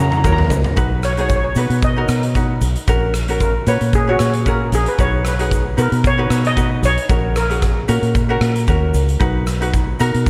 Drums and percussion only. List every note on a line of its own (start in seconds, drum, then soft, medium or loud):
0.12 mid tom medium
0.12 shaker soft
0.24 kick medium
0.24 mid tom loud
0.24 shaker medium
0.38 floor tom medium
0.50 floor tom loud
0.50 shaker loud
0.64 floor tom loud
0.64 shaker soft
0.77 kick medium
0.77 closed hi-hat medium
0.77 shaker medium
1.03 cross-stick medium
1.03 closed hi-hat medium
1.03 shaker medium
1.17 closed hi-hat medium
1.17 shaker soft
1.29 kick medium
1.29 closed hi-hat medium
1.29 shaker medium
1.55 closed hi-hat medium
1.55 shaker medium
1.70 closed hi-hat medium
1.82 kick loud
1.82 closed hi-hat medium
1.82 shaker medium
2.08 cross-stick medium
2.08 closed hi-hat medium
2.08 shaker medium
2.23 closed hi-hat medium
2.35 kick medium
2.35 closed hi-hat medium
2.35 shaker medium
2.61 closed hi-hat medium
2.61 shaker medium
2.75 closed hi-hat medium
2.75 shaker soft
2.87 kick loud
2.87 closed hi-hat medium
2.87 shaker medium
3.14 cross-stick medium
3.14 closed hi-hat medium
3.14 shaker medium
3.28 closed hi-hat medium
3.28 shaker soft
3.40 kick medium
3.40 closed hi-hat medium
3.40 shaker medium
3.66 closed hi-hat medium
3.66 shaker medium
3.81 closed hi-hat medium
3.93 kick loud
3.93 closed hi-hat medium
3.93 shaker medium
4.19 cross-stick medium
4.19 closed hi-hat medium
4.19 shaker loud
4.33 closed hi-hat medium
4.46 kick medium
4.46 closed hi-hat medium
4.46 shaker medium
4.72 closed hi-hat medium
4.72 shaker loud
4.86 closed hi-hat medium
4.86 shaker soft
4.98 kick medium
4.98 closed hi-hat medium
4.98 shaker medium
5.25 cross-stick medium
5.25 closed hi-hat medium
5.25 shaker loud
5.39 closed hi-hat medium
5.39 shaker soft
5.51 kick medium
5.51 closed hi-hat medium
5.51 shaker medium
5.78 closed hi-hat medium
5.78 shaker loud
5.92 closed hi-hat medium
6.04 kick loud
6.04 closed hi-hat medium
6.04 shaker medium
6.30 cross-stick medium
6.30 closed hi-hat medium
6.30 shaker loud
6.45 closed hi-hat medium
6.57 kick medium
6.57 closed hi-hat medium
6.57 shaker medium
6.83 closed hi-hat medium
6.83 shaker medium
6.98 closed hi-hat medium
6.98 shaker soft
7.09 kick loud
7.09 closed hi-hat medium
7.09 shaker medium
7.36 cross-stick medium
7.36 closed hi-hat medium
7.36 shaker medium
7.50 closed hi-hat medium
7.50 shaker soft
7.62 kick medium
7.62 cross-stick medium
7.62 closed hi-hat medium
7.62 shaker medium
7.88 closed hi-hat medium
7.88 shaker medium
8.02 closed hi-hat medium
8.02 shaker soft
8.15 kick loud
8.15 closed hi-hat medium
8.15 shaker medium
8.41 cross-stick loud
8.41 closed hi-hat medium
8.55 closed hi-hat medium
8.55 shaker soft
8.67 kick medium
8.67 closed hi-hat soft
8.67 shaker medium
8.94 closed hi-hat medium
8.94 shaker medium
9.08 closed hi-hat medium
9.08 shaker soft
9.20 kick loud
9.20 closed hi-hat medium
9.20 shaker medium
9.47 cross-stick medium
9.47 closed hi-hat medium
9.47 shaker medium
9.61 closed hi-hat medium
9.61 shaker soft
9.73 kick medium
9.73 closed hi-hat medium
9.73 shaker medium
10.00 closed hi-hat medium
10.00 shaker medium
10.14 closed hi-hat medium
10.26 kick loud
10.26 closed hi-hat medium
10.26 shaker medium